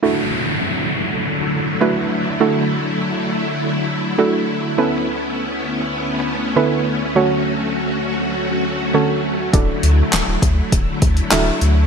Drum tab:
HH |----------------|----------------|----------------|----------------|
CP |----------------|----------------|----------------|----------------|
SD |----------------|----------------|----------------|----------------|
BD |----------------|----------------|----------------|----------------|

HH |x-x-x-x-x-xxx-x-|
CP |----x-------x---|
SD |----o-------o---|
BD |o-----o-o-o-----|